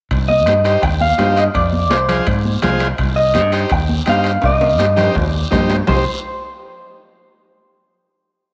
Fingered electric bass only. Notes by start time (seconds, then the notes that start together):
0.11 C2
0.47 G2
0.83 D#2
1.19 G2
1.55 F2
1.91 C2
2.27 G#2
2.63 C2
2.99 C2
3.35 G2
3.71 D#2
4.08 G2
4.44 C2
4.79 G2
5.16 D#2
5.53 G2
5.89 C2